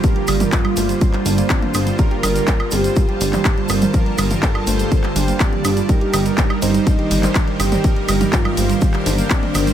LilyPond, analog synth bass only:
\new Staff \with { instrumentName = "Analog synth bass" } { \clef bass \time 4/4 \key g \minor \tempo 4 = 123 r8 g,,8 r8 g,,8 r8 g,,8 r8 g,,8 | r8 g,,8 r8 g,,8 r8 g,,8 r8 g,,8 | r8 g,,8 r8 g,,8 r8 g,,8 r8 g,,8 | r8 g,,8 r8 g,,8 r8 g,,8 r8 g,,8 |
r8 g,,8 r8 g,,8 r8 g,,8 r8 g,,8 | }